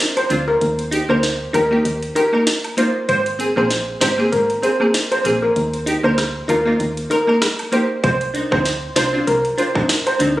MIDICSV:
0, 0, Header, 1, 5, 480
1, 0, Start_track
1, 0, Tempo, 618557
1, 476, Time_signature, 4, 2, 24, 8
1, 8070, End_track
2, 0, Start_track
2, 0, Title_t, "Steel pan"
2, 0, Program_c, 0, 114
2, 131, Note_on_c, 0, 72, 81
2, 209, Note_off_c, 0, 72, 0
2, 370, Note_on_c, 0, 70, 75
2, 449, Note_off_c, 0, 70, 0
2, 851, Note_on_c, 0, 72, 77
2, 929, Note_off_c, 0, 72, 0
2, 1196, Note_on_c, 0, 70, 84
2, 1296, Note_off_c, 0, 70, 0
2, 1676, Note_on_c, 0, 70, 80
2, 1775, Note_off_c, 0, 70, 0
2, 2156, Note_on_c, 0, 72, 73
2, 2256, Note_off_c, 0, 72, 0
2, 2396, Note_on_c, 0, 72, 98
2, 2496, Note_off_c, 0, 72, 0
2, 2770, Note_on_c, 0, 72, 79
2, 2849, Note_off_c, 0, 72, 0
2, 3114, Note_on_c, 0, 72, 84
2, 3215, Note_off_c, 0, 72, 0
2, 3355, Note_on_c, 0, 70, 80
2, 3455, Note_off_c, 0, 70, 0
2, 3595, Note_on_c, 0, 72, 76
2, 3695, Note_off_c, 0, 72, 0
2, 3971, Note_on_c, 0, 72, 82
2, 4049, Note_off_c, 0, 72, 0
2, 4209, Note_on_c, 0, 70, 69
2, 4288, Note_off_c, 0, 70, 0
2, 4689, Note_on_c, 0, 72, 84
2, 4768, Note_off_c, 0, 72, 0
2, 5035, Note_on_c, 0, 70, 76
2, 5135, Note_off_c, 0, 70, 0
2, 5516, Note_on_c, 0, 70, 78
2, 5616, Note_off_c, 0, 70, 0
2, 5996, Note_on_c, 0, 72, 71
2, 6096, Note_off_c, 0, 72, 0
2, 6236, Note_on_c, 0, 72, 98
2, 6335, Note_off_c, 0, 72, 0
2, 6610, Note_on_c, 0, 72, 83
2, 6688, Note_off_c, 0, 72, 0
2, 6955, Note_on_c, 0, 72, 90
2, 7055, Note_off_c, 0, 72, 0
2, 7196, Note_on_c, 0, 70, 88
2, 7296, Note_off_c, 0, 70, 0
2, 7435, Note_on_c, 0, 72, 78
2, 7535, Note_off_c, 0, 72, 0
2, 7810, Note_on_c, 0, 72, 77
2, 7889, Note_off_c, 0, 72, 0
2, 8070, End_track
3, 0, Start_track
3, 0, Title_t, "Synth stab"
3, 0, Program_c, 1, 62
3, 230, Note_on_c, 1, 60, 79
3, 236, Note_on_c, 1, 62, 70
3, 243, Note_on_c, 1, 65, 82
3, 340, Note_off_c, 1, 60, 0
3, 344, Note_off_c, 1, 62, 0
3, 347, Note_off_c, 1, 65, 0
3, 709, Note_on_c, 1, 63, 78
3, 723, Note_on_c, 1, 67, 88
3, 766, Note_off_c, 1, 63, 0
3, 773, Note_off_c, 1, 67, 0
3, 844, Note_on_c, 1, 58, 73
3, 850, Note_on_c, 1, 63, 66
3, 858, Note_on_c, 1, 70, 77
3, 932, Note_off_c, 1, 58, 0
3, 935, Note_off_c, 1, 63, 0
3, 938, Note_off_c, 1, 70, 0
3, 1189, Note_on_c, 1, 63, 78
3, 1203, Note_on_c, 1, 67, 86
3, 1246, Note_off_c, 1, 63, 0
3, 1253, Note_off_c, 1, 67, 0
3, 1324, Note_on_c, 1, 58, 70
3, 1331, Note_on_c, 1, 63, 67
3, 1338, Note_on_c, 1, 67, 80
3, 1412, Note_off_c, 1, 58, 0
3, 1415, Note_off_c, 1, 63, 0
3, 1419, Note_off_c, 1, 67, 0
3, 1671, Note_on_c, 1, 63, 73
3, 1685, Note_on_c, 1, 67, 84
3, 1727, Note_off_c, 1, 63, 0
3, 1734, Note_off_c, 1, 67, 0
3, 1804, Note_on_c, 1, 58, 73
3, 1811, Note_on_c, 1, 63, 63
3, 1818, Note_on_c, 1, 70, 75
3, 1891, Note_off_c, 1, 58, 0
3, 1895, Note_off_c, 1, 63, 0
3, 1898, Note_off_c, 1, 70, 0
3, 2149, Note_on_c, 1, 58, 74
3, 2156, Note_on_c, 1, 63, 69
3, 2163, Note_on_c, 1, 65, 84
3, 2260, Note_off_c, 1, 58, 0
3, 2264, Note_off_c, 1, 63, 0
3, 2267, Note_off_c, 1, 65, 0
3, 2629, Note_on_c, 1, 60, 79
3, 2643, Note_on_c, 1, 68, 87
3, 2686, Note_off_c, 1, 60, 0
3, 2693, Note_off_c, 1, 68, 0
3, 2763, Note_on_c, 1, 58, 70
3, 2770, Note_on_c, 1, 60, 66
3, 2777, Note_on_c, 1, 68, 76
3, 2851, Note_off_c, 1, 58, 0
3, 2855, Note_off_c, 1, 60, 0
3, 2858, Note_off_c, 1, 68, 0
3, 3108, Note_on_c, 1, 60, 80
3, 3122, Note_on_c, 1, 67, 84
3, 3166, Note_off_c, 1, 60, 0
3, 3173, Note_off_c, 1, 67, 0
3, 3242, Note_on_c, 1, 58, 70
3, 3249, Note_on_c, 1, 60, 63
3, 3256, Note_on_c, 1, 68, 81
3, 3331, Note_off_c, 1, 58, 0
3, 3334, Note_off_c, 1, 60, 0
3, 3338, Note_off_c, 1, 68, 0
3, 3588, Note_on_c, 1, 60, 76
3, 3602, Note_on_c, 1, 68, 78
3, 3645, Note_off_c, 1, 60, 0
3, 3653, Note_off_c, 1, 68, 0
3, 3723, Note_on_c, 1, 58, 67
3, 3729, Note_on_c, 1, 60, 61
3, 3736, Note_on_c, 1, 68, 77
3, 3811, Note_off_c, 1, 58, 0
3, 3814, Note_off_c, 1, 60, 0
3, 3818, Note_off_c, 1, 68, 0
3, 4068, Note_on_c, 1, 58, 76
3, 4075, Note_on_c, 1, 60, 70
3, 4082, Note_on_c, 1, 68, 86
3, 4180, Note_off_c, 1, 58, 0
3, 4183, Note_off_c, 1, 60, 0
3, 4186, Note_off_c, 1, 68, 0
3, 4549, Note_on_c, 1, 63, 83
3, 4562, Note_on_c, 1, 67, 84
3, 4606, Note_off_c, 1, 63, 0
3, 4613, Note_off_c, 1, 67, 0
3, 4683, Note_on_c, 1, 58, 71
3, 4690, Note_on_c, 1, 63, 64
3, 4697, Note_on_c, 1, 70, 74
3, 4771, Note_off_c, 1, 58, 0
3, 4774, Note_off_c, 1, 63, 0
3, 4778, Note_off_c, 1, 70, 0
3, 5028, Note_on_c, 1, 63, 81
3, 5042, Note_on_c, 1, 65, 82
3, 5086, Note_off_c, 1, 63, 0
3, 5092, Note_off_c, 1, 65, 0
3, 5163, Note_on_c, 1, 58, 71
3, 5170, Note_on_c, 1, 63, 66
3, 5177, Note_on_c, 1, 65, 80
3, 5251, Note_off_c, 1, 58, 0
3, 5255, Note_off_c, 1, 63, 0
3, 5258, Note_off_c, 1, 65, 0
3, 5509, Note_on_c, 1, 63, 71
3, 5523, Note_on_c, 1, 70, 81
3, 5566, Note_off_c, 1, 63, 0
3, 5573, Note_off_c, 1, 70, 0
3, 5643, Note_on_c, 1, 58, 68
3, 5650, Note_on_c, 1, 63, 61
3, 5657, Note_on_c, 1, 70, 78
3, 5731, Note_off_c, 1, 58, 0
3, 5735, Note_off_c, 1, 63, 0
3, 5738, Note_off_c, 1, 70, 0
3, 5989, Note_on_c, 1, 58, 75
3, 5996, Note_on_c, 1, 63, 67
3, 6003, Note_on_c, 1, 67, 84
3, 6100, Note_off_c, 1, 58, 0
3, 6103, Note_off_c, 1, 63, 0
3, 6107, Note_off_c, 1, 67, 0
3, 6470, Note_on_c, 1, 62, 76
3, 6483, Note_on_c, 1, 63, 89
3, 6526, Note_off_c, 1, 62, 0
3, 6533, Note_off_c, 1, 63, 0
3, 6604, Note_on_c, 1, 60, 71
3, 6611, Note_on_c, 1, 62, 62
3, 6618, Note_on_c, 1, 63, 82
3, 6692, Note_off_c, 1, 60, 0
3, 6695, Note_off_c, 1, 62, 0
3, 6698, Note_off_c, 1, 63, 0
3, 6950, Note_on_c, 1, 62, 78
3, 6963, Note_on_c, 1, 65, 88
3, 7007, Note_off_c, 1, 62, 0
3, 7013, Note_off_c, 1, 65, 0
3, 7083, Note_on_c, 1, 60, 68
3, 7091, Note_on_c, 1, 62, 67
3, 7097, Note_on_c, 1, 65, 78
3, 7171, Note_off_c, 1, 60, 0
3, 7175, Note_off_c, 1, 62, 0
3, 7178, Note_off_c, 1, 65, 0
3, 7430, Note_on_c, 1, 62, 78
3, 7443, Note_on_c, 1, 65, 82
3, 7487, Note_off_c, 1, 62, 0
3, 7493, Note_off_c, 1, 65, 0
3, 7564, Note_on_c, 1, 60, 71
3, 7571, Note_on_c, 1, 62, 65
3, 7577, Note_on_c, 1, 63, 74
3, 7651, Note_off_c, 1, 60, 0
3, 7655, Note_off_c, 1, 62, 0
3, 7658, Note_off_c, 1, 63, 0
3, 7909, Note_on_c, 1, 60, 77
3, 7916, Note_on_c, 1, 62, 66
3, 7923, Note_on_c, 1, 63, 81
3, 8020, Note_off_c, 1, 60, 0
3, 8024, Note_off_c, 1, 62, 0
3, 8027, Note_off_c, 1, 63, 0
3, 8070, End_track
4, 0, Start_track
4, 0, Title_t, "FM bass"
4, 0, Program_c, 2, 39
4, 236, Note_on_c, 2, 38, 93
4, 443, Note_off_c, 2, 38, 0
4, 476, Note_on_c, 2, 39, 114
4, 799, Note_off_c, 2, 39, 0
4, 850, Note_on_c, 2, 38, 92
4, 1149, Note_off_c, 2, 38, 0
4, 1196, Note_on_c, 2, 39, 90
4, 1403, Note_off_c, 2, 39, 0
4, 1436, Note_on_c, 2, 39, 107
4, 1643, Note_off_c, 2, 39, 0
4, 2395, Note_on_c, 2, 32, 109
4, 2719, Note_off_c, 2, 32, 0
4, 2770, Note_on_c, 2, 34, 99
4, 3068, Note_off_c, 2, 34, 0
4, 3115, Note_on_c, 2, 32, 99
4, 3323, Note_off_c, 2, 32, 0
4, 3355, Note_on_c, 2, 32, 106
4, 3563, Note_off_c, 2, 32, 0
4, 4076, Note_on_c, 2, 34, 85
4, 4284, Note_off_c, 2, 34, 0
4, 4316, Note_on_c, 2, 39, 107
4, 4639, Note_off_c, 2, 39, 0
4, 4690, Note_on_c, 2, 38, 96
4, 4989, Note_off_c, 2, 38, 0
4, 5036, Note_on_c, 2, 39, 89
4, 5243, Note_off_c, 2, 39, 0
4, 5276, Note_on_c, 2, 39, 117
4, 5483, Note_off_c, 2, 39, 0
4, 6237, Note_on_c, 2, 36, 112
4, 6560, Note_off_c, 2, 36, 0
4, 6612, Note_on_c, 2, 38, 92
4, 6910, Note_off_c, 2, 38, 0
4, 6956, Note_on_c, 2, 36, 96
4, 7164, Note_off_c, 2, 36, 0
4, 7196, Note_on_c, 2, 36, 110
4, 7403, Note_off_c, 2, 36, 0
4, 7917, Note_on_c, 2, 38, 94
4, 8070, Note_off_c, 2, 38, 0
4, 8070, End_track
5, 0, Start_track
5, 0, Title_t, "Drums"
5, 131, Note_on_c, 9, 42, 58
5, 131, Note_on_c, 9, 76, 72
5, 209, Note_off_c, 9, 42, 0
5, 209, Note_off_c, 9, 76, 0
5, 234, Note_on_c, 9, 42, 82
5, 236, Note_on_c, 9, 69, 65
5, 312, Note_off_c, 9, 42, 0
5, 314, Note_off_c, 9, 69, 0
5, 476, Note_on_c, 9, 42, 74
5, 554, Note_off_c, 9, 42, 0
5, 611, Note_on_c, 9, 42, 51
5, 689, Note_off_c, 9, 42, 0
5, 717, Note_on_c, 9, 42, 76
5, 718, Note_on_c, 9, 69, 67
5, 794, Note_off_c, 9, 42, 0
5, 795, Note_off_c, 9, 69, 0
5, 852, Note_on_c, 9, 76, 68
5, 930, Note_off_c, 9, 76, 0
5, 955, Note_on_c, 9, 42, 82
5, 956, Note_on_c, 9, 38, 73
5, 1032, Note_off_c, 9, 42, 0
5, 1033, Note_off_c, 9, 38, 0
5, 1197, Note_on_c, 9, 42, 76
5, 1201, Note_on_c, 9, 69, 77
5, 1201, Note_on_c, 9, 76, 79
5, 1275, Note_off_c, 9, 42, 0
5, 1279, Note_off_c, 9, 69, 0
5, 1279, Note_off_c, 9, 76, 0
5, 1437, Note_on_c, 9, 42, 75
5, 1515, Note_off_c, 9, 42, 0
5, 1572, Note_on_c, 9, 42, 53
5, 1649, Note_off_c, 9, 42, 0
5, 1677, Note_on_c, 9, 42, 80
5, 1681, Note_on_c, 9, 69, 74
5, 1754, Note_off_c, 9, 42, 0
5, 1758, Note_off_c, 9, 69, 0
5, 1810, Note_on_c, 9, 76, 79
5, 1888, Note_off_c, 9, 76, 0
5, 1915, Note_on_c, 9, 42, 83
5, 1916, Note_on_c, 9, 38, 117
5, 1993, Note_off_c, 9, 38, 0
5, 1993, Note_off_c, 9, 42, 0
5, 2051, Note_on_c, 9, 42, 59
5, 2052, Note_on_c, 9, 76, 71
5, 2129, Note_off_c, 9, 42, 0
5, 2130, Note_off_c, 9, 76, 0
5, 2155, Note_on_c, 9, 42, 84
5, 2156, Note_on_c, 9, 69, 71
5, 2232, Note_off_c, 9, 42, 0
5, 2234, Note_off_c, 9, 69, 0
5, 2396, Note_on_c, 9, 42, 74
5, 2473, Note_off_c, 9, 42, 0
5, 2531, Note_on_c, 9, 42, 52
5, 2608, Note_off_c, 9, 42, 0
5, 2636, Note_on_c, 9, 42, 77
5, 2638, Note_on_c, 9, 69, 68
5, 2714, Note_off_c, 9, 42, 0
5, 2715, Note_off_c, 9, 69, 0
5, 2772, Note_on_c, 9, 76, 69
5, 2849, Note_off_c, 9, 76, 0
5, 2875, Note_on_c, 9, 42, 84
5, 2876, Note_on_c, 9, 38, 68
5, 2952, Note_off_c, 9, 42, 0
5, 2953, Note_off_c, 9, 38, 0
5, 3114, Note_on_c, 9, 38, 127
5, 3117, Note_on_c, 9, 42, 79
5, 3120, Note_on_c, 9, 69, 76
5, 3120, Note_on_c, 9, 76, 80
5, 3192, Note_off_c, 9, 38, 0
5, 3194, Note_off_c, 9, 42, 0
5, 3198, Note_off_c, 9, 69, 0
5, 3198, Note_off_c, 9, 76, 0
5, 3356, Note_on_c, 9, 42, 78
5, 3434, Note_off_c, 9, 42, 0
5, 3491, Note_on_c, 9, 42, 55
5, 3568, Note_off_c, 9, 42, 0
5, 3596, Note_on_c, 9, 42, 78
5, 3599, Note_on_c, 9, 69, 72
5, 3673, Note_off_c, 9, 42, 0
5, 3677, Note_off_c, 9, 69, 0
5, 3730, Note_on_c, 9, 76, 77
5, 3808, Note_off_c, 9, 76, 0
5, 3835, Note_on_c, 9, 38, 117
5, 3835, Note_on_c, 9, 42, 81
5, 3912, Note_off_c, 9, 42, 0
5, 3913, Note_off_c, 9, 38, 0
5, 3970, Note_on_c, 9, 42, 59
5, 3971, Note_on_c, 9, 76, 71
5, 4048, Note_off_c, 9, 42, 0
5, 4049, Note_off_c, 9, 76, 0
5, 4074, Note_on_c, 9, 42, 80
5, 4077, Note_on_c, 9, 69, 70
5, 4152, Note_off_c, 9, 42, 0
5, 4154, Note_off_c, 9, 69, 0
5, 4315, Note_on_c, 9, 42, 73
5, 4393, Note_off_c, 9, 42, 0
5, 4450, Note_on_c, 9, 42, 48
5, 4528, Note_off_c, 9, 42, 0
5, 4556, Note_on_c, 9, 42, 76
5, 4558, Note_on_c, 9, 69, 68
5, 4633, Note_off_c, 9, 42, 0
5, 4636, Note_off_c, 9, 69, 0
5, 4692, Note_on_c, 9, 76, 70
5, 4769, Note_off_c, 9, 76, 0
5, 4794, Note_on_c, 9, 42, 83
5, 4795, Note_on_c, 9, 37, 74
5, 4795, Note_on_c, 9, 38, 72
5, 4872, Note_off_c, 9, 42, 0
5, 4873, Note_off_c, 9, 37, 0
5, 4873, Note_off_c, 9, 38, 0
5, 5036, Note_on_c, 9, 42, 75
5, 5041, Note_on_c, 9, 69, 80
5, 5041, Note_on_c, 9, 76, 78
5, 5114, Note_off_c, 9, 42, 0
5, 5119, Note_off_c, 9, 69, 0
5, 5119, Note_off_c, 9, 76, 0
5, 5277, Note_on_c, 9, 42, 76
5, 5354, Note_off_c, 9, 42, 0
5, 5411, Note_on_c, 9, 42, 57
5, 5488, Note_off_c, 9, 42, 0
5, 5516, Note_on_c, 9, 42, 75
5, 5521, Note_on_c, 9, 69, 72
5, 5594, Note_off_c, 9, 42, 0
5, 5599, Note_off_c, 9, 69, 0
5, 5651, Note_on_c, 9, 76, 80
5, 5728, Note_off_c, 9, 76, 0
5, 5756, Note_on_c, 9, 37, 102
5, 5756, Note_on_c, 9, 38, 121
5, 5756, Note_on_c, 9, 42, 78
5, 5833, Note_off_c, 9, 37, 0
5, 5833, Note_off_c, 9, 38, 0
5, 5833, Note_off_c, 9, 42, 0
5, 5891, Note_on_c, 9, 42, 58
5, 5893, Note_on_c, 9, 76, 69
5, 5968, Note_off_c, 9, 42, 0
5, 5970, Note_off_c, 9, 76, 0
5, 5995, Note_on_c, 9, 42, 80
5, 5997, Note_on_c, 9, 69, 72
5, 6072, Note_off_c, 9, 42, 0
5, 6075, Note_off_c, 9, 69, 0
5, 6236, Note_on_c, 9, 36, 113
5, 6237, Note_on_c, 9, 42, 77
5, 6314, Note_off_c, 9, 36, 0
5, 6314, Note_off_c, 9, 42, 0
5, 6371, Note_on_c, 9, 42, 50
5, 6448, Note_off_c, 9, 42, 0
5, 6476, Note_on_c, 9, 42, 74
5, 6479, Note_on_c, 9, 69, 69
5, 6554, Note_off_c, 9, 42, 0
5, 6557, Note_off_c, 9, 69, 0
5, 6612, Note_on_c, 9, 36, 96
5, 6613, Note_on_c, 9, 76, 69
5, 6689, Note_off_c, 9, 36, 0
5, 6691, Note_off_c, 9, 76, 0
5, 6715, Note_on_c, 9, 42, 83
5, 6716, Note_on_c, 9, 38, 72
5, 6793, Note_off_c, 9, 42, 0
5, 6794, Note_off_c, 9, 38, 0
5, 6954, Note_on_c, 9, 38, 121
5, 6957, Note_on_c, 9, 42, 76
5, 6962, Note_on_c, 9, 69, 77
5, 6962, Note_on_c, 9, 76, 74
5, 7032, Note_off_c, 9, 38, 0
5, 7034, Note_off_c, 9, 42, 0
5, 7040, Note_off_c, 9, 69, 0
5, 7040, Note_off_c, 9, 76, 0
5, 7197, Note_on_c, 9, 42, 72
5, 7274, Note_off_c, 9, 42, 0
5, 7331, Note_on_c, 9, 42, 55
5, 7409, Note_off_c, 9, 42, 0
5, 7437, Note_on_c, 9, 42, 81
5, 7442, Note_on_c, 9, 69, 69
5, 7514, Note_off_c, 9, 42, 0
5, 7519, Note_off_c, 9, 69, 0
5, 7569, Note_on_c, 9, 36, 92
5, 7571, Note_on_c, 9, 76, 77
5, 7647, Note_off_c, 9, 36, 0
5, 7649, Note_off_c, 9, 76, 0
5, 7676, Note_on_c, 9, 42, 78
5, 7677, Note_on_c, 9, 38, 118
5, 7754, Note_off_c, 9, 38, 0
5, 7754, Note_off_c, 9, 42, 0
5, 7812, Note_on_c, 9, 42, 57
5, 7813, Note_on_c, 9, 76, 74
5, 7889, Note_off_c, 9, 42, 0
5, 7891, Note_off_c, 9, 76, 0
5, 7915, Note_on_c, 9, 42, 83
5, 7917, Note_on_c, 9, 69, 68
5, 7992, Note_off_c, 9, 42, 0
5, 7995, Note_off_c, 9, 69, 0
5, 8070, End_track
0, 0, End_of_file